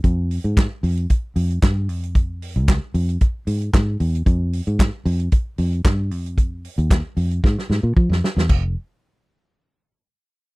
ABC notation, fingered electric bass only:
X:1
M:4/4
L:1/16
Q:1/4=114
K:Fm
V:1 name="Fingered electric bass" clef=bass
F,,3 A,,2 z F,,2 z2 F,,2 G,,2 F,,2- | F,,3 D,,2 z F,,2 z2 ^G,,2 G,,2 =E,,2 | F,,3 A,,2 z F,,2 z2 F,,2 G,,2 F,,2- | F,,3 E,,2 z F,,2 A,, z A,, B,, F, F,, z =E,, |
F,,,2 z12 z2 |]